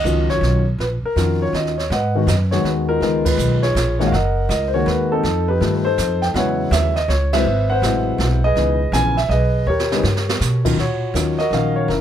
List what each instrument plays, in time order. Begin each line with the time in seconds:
Already playing: grand piano D#5
0.04 upright bass C#2, grand piano D#3 F#3 C#4 F4, hi-hat pedal
0.29 grand piano C#5, kick, snare
0.41 upright bass B1, snare
0.78 upright bass A#1, grand piano B4, brush sweep, snare
1.03 grand piano A#4, muted upright bass stroke
1.16 upright bass F2, grand piano D#3 C#4 F4 F#4, snare, hi-hat pedal
1.42 grand piano C#5
1.53 upright bass D#2, grand piano D#5, snare
1.67 snare
1.78 grand piano C#5, snare
1.90 upright bass G#2, grand piano B4 D#5 F#5, brush sweep, snare
2.15 grand piano D#3 G#3 B3 F#4
2.27 upright bass F#2, grand piano D#5, snare, hi-hat pedal
2.51 grand piano D#3 G#3 B3 F#4 C#5, snare
2.64 upright bass D#2, grand piano B4, snare
2.89 grand piano D#4 F4 A#4
3.01 upright bass C#2, grand piano D#3 G#3 B3 F4, brush sweep, snare
3.25 grand piano D#4 F4 B4, kick, crash
3.38 upright bass B1, hi-hat pedal
3.63 grand piano F4 G#4 C#5, snare
3.75 upright bass A#1, snare, hi-hat pedal
3.99 grand piano D#3 G#3 A#3 F#4 C#5, snare
4.07 grand piano F5
4.12 upright bass F#1, grand piano A#4 D#5 F#5, brush sweep, snare
4.49 upright bass C#2, grand piano D#5, snare, hi-hat pedal
4.68 grand piano C5
4.74 grand piano D#3 G#3 A#3 F#4 C#5
4.86 upright bass D#2, grand piano B4, snare
5.12 grand piano C4 D#4 A4
5.23 upright bass F2, brush sweep, snare
5.48 grand piano D#4 G4 B4
5.61 upright bass G2, grand piano D#3 G3 A3 F4, snare
5.76 grand piano B4
5.85 grand piano D#4 A4 C5
5.98 upright bass F2, snare, hi-hat pedal
6.22 grand piano G5, snare
6.34 upright bass E2, grand piano C#3 F#3 G#3 E4 B4 C#5 F#5, brush sweep, snare
6.71 upright bass D#2, grand piano E5, snare, hi-hat pedal
6.96 grand piano D#5, snare
7.08 upright bass C#2, grand piano C#5, snare
7.33 grand piano C3 F#3 G#3 E4 B4 C5 E5, snare, ride
7.45 upright bass G#1, brush sweep
7.70 grand piano B4 C5 F#5
7.82 upright bass A1, grand piano C3 F#3 G#3 E4, snare, hi-hat pedal
8.18 upright bass B1, snare
8.44 grand piano G#4 B4 D#5
8.56 upright bass C#2, grand piano C#3 E3 B3 D#4, brush sweep, snare
8.92 upright bass A#1, grand piano C#3 E3 B3 C#4 G#5, snare, hi-hat pedal
9.17 grand piano E5, snare
9.29 upright bass B1, grand piano G#4 B4 D#5, snare
9.66 upright bass D#2, grand piano G4 A#4 C#5
9.79 snare
9.92 grand piano C#3 G3 B3 D#4, snare
10.03 upright bass G2, snare
10.17 snare
10.29 snare
10.41 upright bass B2, snare, hi-hat pedal
10.65 grand piano D#3 F#3 C#4 F4, kick, crash
10.77 upright bass A#2, grand piano F4 F#4 C#5, brush sweep, snare
11.14 upright bass D#2, grand piano D#3 F#3 C#4 F4, snare, hi-hat pedal
11.39 grand piano F#4 A#4 D#5, snare
11.51 upright bass A#1, grand piano D#3 F#3 C#4 F5, snare
11.76 grand piano C#5
11.88 upright bass F#1, grand piano C#4 E4 A#4, brush sweep, snare